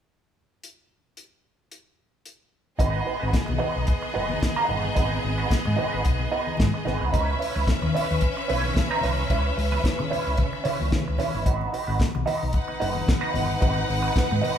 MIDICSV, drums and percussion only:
0, 0, Header, 1, 2, 480
1, 0, Start_track
1, 0, Key_signature, 5, "minor"
1, 0, Tempo, 541516
1, 558, Time_signature, 4, 2, 24, 8
1, 12924, End_track
2, 0, Start_track
2, 0, Title_t, "Drums"
2, 563, Note_on_c, 9, 42, 55
2, 652, Note_off_c, 9, 42, 0
2, 1038, Note_on_c, 9, 42, 51
2, 1126, Note_off_c, 9, 42, 0
2, 1520, Note_on_c, 9, 42, 55
2, 1609, Note_off_c, 9, 42, 0
2, 1999, Note_on_c, 9, 42, 54
2, 2088, Note_off_c, 9, 42, 0
2, 2469, Note_on_c, 9, 62, 31
2, 2469, Note_on_c, 9, 64, 65
2, 2477, Note_on_c, 9, 36, 107
2, 2482, Note_on_c, 9, 42, 65
2, 2557, Note_off_c, 9, 62, 0
2, 2557, Note_off_c, 9, 64, 0
2, 2566, Note_off_c, 9, 36, 0
2, 2570, Note_off_c, 9, 42, 0
2, 2954, Note_on_c, 9, 36, 102
2, 2958, Note_on_c, 9, 42, 67
2, 2959, Note_on_c, 9, 62, 32
2, 2964, Note_on_c, 9, 38, 93
2, 3043, Note_off_c, 9, 36, 0
2, 3046, Note_off_c, 9, 42, 0
2, 3048, Note_off_c, 9, 62, 0
2, 3052, Note_off_c, 9, 38, 0
2, 3087, Note_on_c, 9, 62, 32
2, 3087, Note_on_c, 9, 63, 74
2, 3176, Note_off_c, 9, 62, 0
2, 3176, Note_off_c, 9, 63, 0
2, 3194, Note_on_c, 9, 64, 56
2, 3282, Note_off_c, 9, 64, 0
2, 3429, Note_on_c, 9, 42, 63
2, 3439, Note_on_c, 9, 36, 110
2, 3518, Note_off_c, 9, 42, 0
2, 3528, Note_off_c, 9, 36, 0
2, 3562, Note_on_c, 9, 62, 28
2, 3651, Note_off_c, 9, 62, 0
2, 3802, Note_on_c, 9, 63, 73
2, 3891, Note_off_c, 9, 63, 0
2, 3900, Note_on_c, 9, 62, 37
2, 3900, Note_on_c, 9, 63, 72
2, 3922, Note_on_c, 9, 36, 89
2, 3923, Note_on_c, 9, 38, 112
2, 3924, Note_on_c, 9, 42, 54
2, 3988, Note_off_c, 9, 62, 0
2, 3988, Note_off_c, 9, 63, 0
2, 4010, Note_off_c, 9, 36, 0
2, 4012, Note_off_c, 9, 38, 0
2, 4013, Note_off_c, 9, 42, 0
2, 4054, Note_on_c, 9, 62, 32
2, 4142, Note_off_c, 9, 62, 0
2, 4156, Note_on_c, 9, 63, 74
2, 4156, Note_on_c, 9, 64, 71
2, 4245, Note_off_c, 9, 63, 0
2, 4245, Note_off_c, 9, 64, 0
2, 4397, Note_on_c, 9, 62, 31
2, 4397, Note_on_c, 9, 64, 68
2, 4401, Note_on_c, 9, 42, 76
2, 4402, Note_on_c, 9, 36, 100
2, 4485, Note_off_c, 9, 62, 0
2, 4485, Note_off_c, 9, 64, 0
2, 4489, Note_off_c, 9, 42, 0
2, 4490, Note_off_c, 9, 36, 0
2, 4881, Note_on_c, 9, 36, 99
2, 4887, Note_on_c, 9, 42, 62
2, 4893, Note_on_c, 9, 38, 92
2, 4969, Note_off_c, 9, 36, 0
2, 4975, Note_off_c, 9, 42, 0
2, 4981, Note_off_c, 9, 38, 0
2, 5010, Note_on_c, 9, 63, 72
2, 5099, Note_off_c, 9, 63, 0
2, 5113, Note_on_c, 9, 64, 53
2, 5202, Note_off_c, 9, 64, 0
2, 5356, Note_on_c, 9, 62, 31
2, 5360, Note_on_c, 9, 42, 61
2, 5368, Note_on_c, 9, 36, 104
2, 5444, Note_off_c, 9, 62, 0
2, 5449, Note_off_c, 9, 42, 0
2, 5457, Note_off_c, 9, 36, 0
2, 5487, Note_on_c, 9, 62, 33
2, 5576, Note_off_c, 9, 62, 0
2, 5735, Note_on_c, 9, 63, 65
2, 5824, Note_off_c, 9, 63, 0
2, 5824, Note_on_c, 9, 62, 34
2, 5824, Note_on_c, 9, 63, 83
2, 5848, Note_on_c, 9, 36, 107
2, 5851, Note_on_c, 9, 38, 106
2, 5852, Note_on_c, 9, 42, 52
2, 5912, Note_off_c, 9, 62, 0
2, 5912, Note_off_c, 9, 63, 0
2, 5936, Note_off_c, 9, 36, 0
2, 5939, Note_off_c, 9, 38, 0
2, 5940, Note_off_c, 9, 42, 0
2, 6079, Note_on_c, 9, 63, 66
2, 6079, Note_on_c, 9, 64, 66
2, 6091, Note_on_c, 9, 38, 33
2, 6167, Note_off_c, 9, 63, 0
2, 6167, Note_off_c, 9, 64, 0
2, 6180, Note_off_c, 9, 38, 0
2, 6315, Note_on_c, 9, 64, 70
2, 6326, Note_on_c, 9, 36, 97
2, 6327, Note_on_c, 9, 42, 72
2, 6404, Note_off_c, 9, 64, 0
2, 6415, Note_off_c, 9, 36, 0
2, 6415, Note_off_c, 9, 42, 0
2, 6578, Note_on_c, 9, 46, 62
2, 6667, Note_off_c, 9, 46, 0
2, 6801, Note_on_c, 9, 62, 34
2, 6803, Note_on_c, 9, 36, 113
2, 6806, Note_on_c, 9, 42, 72
2, 6812, Note_on_c, 9, 38, 92
2, 6889, Note_off_c, 9, 62, 0
2, 6891, Note_off_c, 9, 36, 0
2, 6894, Note_off_c, 9, 42, 0
2, 6900, Note_off_c, 9, 38, 0
2, 6933, Note_on_c, 9, 62, 34
2, 6933, Note_on_c, 9, 63, 73
2, 7021, Note_off_c, 9, 62, 0
2, 7021, Note_off_c, 9, 63, 0
2, 7036, Note_on_c, 9, 64, 55
2, 7060, Note_on_c, 9, 46, 63
2, 7125, Note_off_c, 9, 64, 0
2, 7149, Note_off_c, 9, 46, 0
2, 7272, Note_on_c, 9, 62, 32
2, 7277, Note_on_c, 9, 42, 68
2, 7288, Note_on_c, 9, 36, 106
2, 7361, Note_off_c, 9, 62, 0
2, 7366, Note_off_c, 9, 42, 0
2, 7376, Note_off_c, 9, 36, 0
2, 7529, Note_on_c, 9, 46, 62
2, 7618, Note_off_c, 9, 46, 0
2, 7646, Note_on_c, 9, 63, 75
2, 7735, Note_off_c, 9, 63, 0
2, 7746, Note_on_c, 9, 63, 76
2, 7767, Note_on_c, 9, 36, 106
2, 7770, Note_on_c, 9, 38, 103
2, 7772, Note_on_c, 9, 42, 51
2, 7835, Note_off_c, 9, 63, 0
2, 7856, Note_off_c, 9, 36, 0
2, 7859, Note_off_c, 9, 38, 0
2, 7860, Note_off_c, 9, 42, 0
2, 7887, Note_on_c, 9, 62, 30
2, 7976, Note_off_c, 9, 62, 0
2, 7989, Note_on_c, 9, 63, 68
2, 7989, Note_on_c, 9, 64, 72
2, 8006, Note_on_c, 9, 46, 56
2, 8010, Note_on_c, 9, 38, 32
2, 8077, Note_off_c, 9, 63, 0
2, 8077, Note_off_c, 9, 64, 0
2, 8095, Note_off_c, 9, 46, 0
2, 8098, Note_off_c, 9, 38, 0
2, 8228, Note_on_c, 9, 62, 31
2, 8228, Note_on_c, 9, 64, 65
2, 8244, Note_on_c, 9, 36, 101
2, 8244, Note_on_c, 9, 42, 79
2, 8317, Note_off_c, 9, 62, 0
2, 8317, Note_off_c, 9, 64, 0
2, 8333, Note_off_c, 9, 36, 0
2, 8333, Note_off_c, 9, 42, 0
2, 8497, Note_on_c, 9, 46, 66
2, 8586, Note_off_c, 9, 46, 0
2, 8610, Note_on_c, 9, 63, 59
2, 8699, Note_off_c, 9, 63, 0
2, 8719, Note_on_c, 9, 62, 28
2, 8721, Note_on_c, 9, 36, 104
2, 8731, Note_on_c, 9, 42, 66
2, 8737, Note_on_c, 9, 38, 102
2, 8807, Note_off_c, 9, 62, 0
2, 8810, Note_off_c, 9, 36, 0
2, 8820, Note_off_c, 9, 42, 0
2, 8826, Note_off_c, 9, 38, 0
2, 8860, Note_on_c, 9, 62, 34
2, 8860, Note_on_c, 9, 63, 66
2, 8949, Note_off_c, 9, 62, 0
2, 8949, Note_off_c, 9, 63, 0
2, 8962, Note_on_c, 9, 64, 55
2, 8978, Note_on_c, 9, 46, 55
2, 9050, Note_off_c, 9, 64, 0
2, 9067, Note_off_c, 9, 46, 0
2, 9196, Note_on_c, 9, 42, 69
2, 9204, Note_on_c, 9, 36, 110
2, 9284, Note_off_c, 9, 42, 0
2, 9293, Note_off_c, 9, 36, 0
2, 9331, Note_on_c, 9, 62, 33
2, 9420, Note_off_c, 9, 62, 0
2, 9440, Note_on_c, 9, 46, 61
2, 9528, Note_off_c, 9, 46, 0
2, 9572, Note_on_c, 9, 63, 77
2, 9660, Note_off_c, 9, 63, 0
2, 9673, Note_on_c, 9, 63, 75
2, 9682, Note_on_c, 9, 36, 99
2, 9683, Note_on_c, 9, 38, 107
2, 9684, Note_on_c, 9, 42, 53
2, 9761, Note_off_c, 9, 63, 0
2, 9771, Note_off_c, 9, 36, 0
2, 9772, Note_off_c, 9, 38, 0
2, 9773, Note_off_c, 9, 42, 0
2, 9911, Note_on_c, 9, 63, 78
2, 9911, Note_on_c, 9, 64, 67
2, 9923, Note_on_c, 9, 46, 63
2, 9926, Note_on_c, 9, 38, 31
2, 10000, Note_off_c, 9, 63, 0
2, 10000, Note_off_c, 9, 64, 0
2, 10012, Note_off_c, 9, 46, 0
2, 10015, Note_off_c, 9, 38, 0
2, 10154, Note_on_c, 9, 62, 28
2, 10154, Note_on_c, 9, 64, 65
2, 10158, Note_on_c, 9, 36, 109
2, 10160, Note_on_c, 9, 42, 68
2, 10243, Note_off_c, 9, 62, 0
2, 10243, Note_off_c, 9, 64, 0
2, 10247, Note_off_c, 9, 36, 0
2, 10248, Note_off_c, 9, 42, 0
2, 10294, Note_on_c, 9, 62, 36
2, 10382, Note_off_c, 9, 62, 0
2, 10405, Note_on_c, 9, 46, 64
2, 10494, Note_off_c, 9, 46, 0
2, 10633, Note_on_c, 9, 36, 105
2, 10639, Note_on_c, 9, 42, 65
2, 10641, Note_on_c, 9, 62, 29
2, 10645, Note_on_c, 9, 38, 87
2, 10722, Note_off_c, 9, 36, 0
2, 10728, Note_off_c, 9, 42, 0
2, 10730, Note_off_c, 9, 62, 0
2, 10734, Note_off_c, 9, 38, 0
2, 10770, Note_on_c, 9, 62, 35
2, 10770, Note_on_c, 9, 63, 68
2, 10859, Note_off_c, 9, 62, 0
2, 10859, Note_off_c, 9, 63, 0
2, 10870, Note_on_c, 9, 64, 57
2, 10879, Note_on_c, 9, 46, 68
2, 10959, Note_off_c, 9, 64, 0
2, 10968, Note_off_c, 9, 46, 0
2, 11105, Note_on_c, 9, 42, 68
2, 11108, Note_on_c, 9, 62, 32
2, 11116, Note_on_c, 9, 36, 99
2, 11194, Note_off_c, 9, 42, 0
2, 11196, Note_off_c, 9, 62, 0
2, 11205, Note_off_c, 9, 36, 0
2, 11239, Note_on_c, 9, 62, 32
2, 11328, Note_off_c, 9, 62, 0
2, 11359, Note_on_c, 9, 46, 58
2, 11448, Note_off_c, 9, 46, 0
2, 11480, Note_on_c, 9, 63, 74
2, 11569, Note_off_c, 9, 63, 0
2, 11574, Note_on_c, 9, 63, 73
2, 11598, Note_on_c, 9, 36, 112
2, 11601, Note_on_c, 9, 38, 108
2, 11602, Note_on_c, 9, 42, 52
2, 11663, Note_off_c, 9, 63, 0
2, 11687, Note_off_c, 9, 36, 0
2, 11690, Note_off_c, 9, 38, 0
2, 11691, Note_off_c, 9, 42, 0
2, 11721, Note_on_c, 9, 62, 34
2, 11810, Note_off_c, 9, 62, 0
2, 11827, Note_on_c, 9, 63, 71
2, 11827, Note_on_c, 9, 64, 74
2, 11836, Note_on_c, 9, 46, 58
2, 11916, Note_off_c, 9, 63, 0
2, 11916, Note_off_c, 9, 64, 0
2, 11925, Note_off_c, 9, 46, 0
2, 12065, Note_on_c, 9, 64, 73
2, 12073, Note_on_c, 9, 36, 107
2, 12074, Note_on_c, 9, 42, 77
2, 12154, Note_off_c, 9, 64, 0
2, 12162, Note_off_c, 9, 36, 0
2, 12162, Note_off_c, 9, 42, 0
2, 12214, Note_on_c, 9, 62, 36
2, 12303, Note_off_c, 9, 62, 0
2, 12323, Note_on_c, 9, 46, 71
2, 12411, Note_off_c, 9, 46, 0
2, 12550, Note_on_c, 9, 36, 115
2, 12554, Note_on_c, 9, 42, 74
2, 12560, Note_on_c, 9, 38, 93
2, 12639, Note_off_c, 9, 36, 0
2, 12643, Note_off_c, 9, 42, 0
2, 12649, Note_off_c, 9, 38, 0
2, 12689, Note_on_c, 9, 63, 78
2, 12778, Note_off_c, 9, 63, 0
2, 12791, Note_on_c, 9, 64, 61
2, 12804, Note_on_c, 9, 46, 64
2, 12879, Note_off_c, 9, 64, 0
2, 12892, Note_off_c, 9, 46, 0
2, 12924, End_track
0, 0, End_of_file